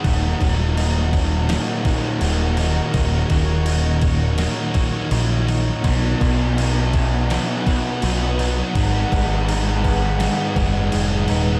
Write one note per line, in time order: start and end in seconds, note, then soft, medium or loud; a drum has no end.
0.00 1.47 D#2 medium
0.00 5.84 F#3 medium
0.00 5.84 A#3 medium
0.00 0.77 D#4 medium
0.00 5.78 D#4 medium
0.00 5.78 F#5 medium
0.04 0.33 D#1 medium
0.04 1.86 D#2 medium
0.04 0.40 A#2 medium
0.04 0.39 D#3 medium
0.04 5.84 D#4 medium
0.04 5.80 A#4 medium
0.04 8.71 C#5 medium
0.04 kick loud
0.04 crash medium
0.40 1.56 D#1 medium
0.40 1.48 A#2 soft
0.40 1.48 D#3 medium
0.40 1.50 F#3 medium
0.40 kick medium
0.40 crash medium
0.77 2.59 D#4 medium
0.77 crash medium
1.13 2.95 A#3 medium
1.13 kick medium
1.13 crash medium
1.47 2.19 D#2 medium
1.47 2.20 A#2 medium
1.47 2.22 D#3 medium
1.47 2.22 F#3 medium
1.47 snare loud
1.47 crash medium
1.85 3.67 D#3 medium
1.85 kick medium
1.85 crash medium
2.21 2.80 D#1 medium
2.21 2.91 D#2 medium
2.21 2.59 A#2 medium
2.21 2.56 D#3 medium
2.21 3.32 F#3 medium
2.21 crash medium
2.57 2.93 A#2 medium
2.57 2.94 D#3 medium
2.57 3.67 D#4 medium
2.57 crash medium
2.92 3.23 D#1 medium
2.92 3.66 D#2 medium
2.92 4.77 D#2 medium
2.92 3.31 A#2 loud
2.92 3.28 D#3 medium
2.92 kick loud
2.92 crash medium
3.29 4.46 D#1 medium
3.29 4.38 A#2 medium
3.29 4.39 D#3 medium
3.29 4.39 F#3 medium
3.29 kick medium
3.29 crash medium
3.66 5.49 D#4 medium
3.66 crash medium
4.01 5.85 A#3 medium
4.01 kick medium
4.01 crash medium
4.38 5.09 D#2 medium
4.38 5.10 A#2 medium
4.38 5.11 D#3 medium
4.38 5.12 F#3 medium
4.38 snare loud
4.38 crash medium
4.74 5.85 D#3 medium
4.74 kick medium
4.74 crash medium
5.10 5.70 A#1 medium
5.10 5.81 D#2 medium
5.10 5.48 A#2 medium
5.10 5.46 D#3 medium
5.10 6.20 F#3 medium
5.10 crash medium
5.47 5.82 A#2 medium
5.47 5.82 D#3 medium
5.47 6.58 D#4 medium
5.47 crash medium
5.82 6.13 B1 medium
5.82 6.56 B2 medium
5.82 7.66 B2 medium
5.82 6.21 F#3 medium
5.82 6.19 B3 loud
5.82 8.76 C#4 medium
5.82 11.60 D#4 medium
5.82 11.60 B4 medium
5.82 11.60 F#5 medium
5.82 kick loud
5.82 crash medium
5.88 8.78 D#4 medium
6.19 7.37 B1 medium
6.19 7.30 F#3 medium
6.19 7.30 B3 medium
6.19 7.29 B3 medium
6.19 kick medium
6.19 crash soft
6.58 8.39 D#4 medium
6.58 crash medium
6.93 8.75 C#4 medium
6.93 kick medium
6.93 crash medium
7.29 8.01 B2 medium
7.29 8.03 F#3 loud
7.29 8.02 B3 medium
7.29 8.03 B3 loud
7.29 snare loud
7.29 crash medium
7.67 8.79 F#3 medium
7.67 kick medium
7.67 crash medium
8.02 8.61 B1 medium
8.02 8.73 B2 medium
8.02 8.40 F#3 medium
8.02 8.75 B3 medium
8.02 8.37 B3 medium
8.02 crash medium
8.38 8.75 F#3 medium
8.38 8.72 B3 medium
8.38 9.48 D#4 medium
8.38 crash medium
8.74 9.04 G#1 medium
8.74 9.47 G#2 medium
8.74 10.56 G#2 medium
8.74 9.13 D#3 medium
8.74 9.11 G#3 loud
8.74 11.60 B3 medium
8.74 11.60 D#4 medium
8.74 11.60 G#4 medium
8.74 kick loud
8.74 crash medium
9.11 10.27 G#1 medium
9.11 10.20 D#3 medium
9.11 10.19 G#3 medium
9.11 10.21 G#3 medium
9.11 kick medium
9.11 crash medium
9.48 11.28 D#4 medium
9.48 crash medium
9.84 11.60 B3 medium
9.84 kick medium
9.84 crash medium
10.19 10.89 G#2 medium
10.19 10.90 D#3 medium
10.19 10.92 G#3 medium
10.19 snare loud
10.19 crash medium
10.56 10.89 F#1 medium
10.56 11.60 D#3 medium
10.56 kick medium
10.56 crash medium
10.91 11.60 G#2 medium
10.91 11.28 D#3 medium
10.91 11.26 G#3 medium
10.91 11.60 G#3 medium
10.91 crash medium
10.95 11.26 F1 medium
11.27 11.60 D#1 medium
11.27 11.60 D#3 medium
11.27 11.60 G#3 medium
11.27 11.60 D#4 medium
11.27 crash medium